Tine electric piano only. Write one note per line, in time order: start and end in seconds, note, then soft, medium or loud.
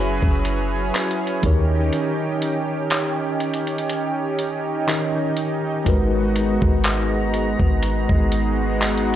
0.00 1.39 F#3 medium
0.00 1.39 C#4 medium
0.00 1.40 E4 medium
0.00 1.40 G#4 medium
0.00 1.41 B4 medium
1.42 4.83 D#3 medium
1.42 4.84 D#4 medium
1.42 4.84 G4 medium
1.42 4.85 A#4 medium
1.42 4.85 C#5 medium
4.88 5.86 D#3 medium
4.88 5.85 D#4 soft
4.88 5.86 G4 soft
4.88 5.87 A#4 soft
4.88 5.87 D#5 medium
5.85 9.16 G#3 medium
5.85 9.16 D#4 medium
5.85 9.16 F#4 medium
5.85 9.16 A#4 medium
5.89 9.16 B4 medium